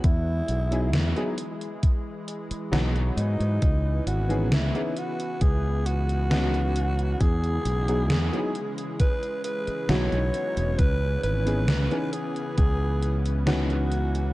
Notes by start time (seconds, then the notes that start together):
0.04 E2 E3 G#3 E4, kick, closed hi-hat
0.48 B1, closed hi-hat
0.71 F#3 B3 D#4 E4 G#4, closed hi-hat
0.93 E2, snare, closed hi-hat
1.16 F#3 B3 D#4 E4 G#4, closed hi-hat
1.38 closed hi-hat
1.61 closed hi-hat
1.83 kick, closed hi-hat
2.28 closed hi-hat
2.51 muted fingered electric bass stroke, closed hi-hat
2.72 B1 E3 F#3 B3 D#4 F#4, snare, closed hi-hat
2.96 closed hi-hat
3.17 G#2 D#4, closed hi-hat
3.40 G#2, closed hi-hat
3.62 C#2 C#3 B3, kick, closed hi-hat
4.07 G#1 F#4, closed hi-hat
4.29 E3 B3 C#4 D#4 G#4, closed hi-hat
4.52 C#2 E4, snare, closed hi-hat
4.74 E3 B3 C#4 D#4 G#4, closed hi-hat
4.97 F#4, closed hi-hat
5.20 closed hi-hat
5.41 C#2 G#4, kick, closed hi-hat
5.86 F#4, closed hi-hat
6.09 closed hi-hat
6.30 E3 B3 C#4 D#4 F#4, snare, closed hi-hat
6.54 closed hi-hat
6.76 closed hi-hat
6.99 closed hi-hat
7.21 E2 E3 G#3 G#4, kick, closed hi-hat
7.44 closed hi-hat
7.65 B1, closed hi-hat
7.88 F#3 B3 D#4 E4 G#4, closed hi-hat
8.10 E2, snare, closed hi-hat
8.32 F#3 B3 D#4 E4 G#4, closed hi-hat
8.55 closed hi-hat
8.78 closed hi-hat
9.00 B4, kick, closed hi-hat
9.23 closed hi-hat
9.44 B4, closed hi-hat
9.67 muted fingered electric bass stroke, closed hi-hat
9.89 B1 F#3 B3 D#4 E4 F#4 C#5, snare, closed hi-hat
10.12 B1, closed hi-hat
10.34 closed hi-hat
10.57 E1, closed hi-hat
10.79 C#2 B3 B4, kick, closed hi-hat
11.23 G#1 B4, closed hi-hat
11.46 E3 B3 C#4 D#4 G#4, closed hi-hat
11.68 C#2, snare, closed hi-hat
11.91 E3 B3 C#4 D#4 G#4, closed hi-hat
12.13 G#4, closed hi-hat
12.36 closed hi-hat
12.58 C#2 G#4, kick, closed hi-hat
13.03 closed hi-hat
13.26 closed hi-hat
13.46 E3 B3 C#4 D#4 F#4, snare, closed hi-hat
13.70 closed hi-hat
13.92 closed hi-hat
14.15 closed hi-hat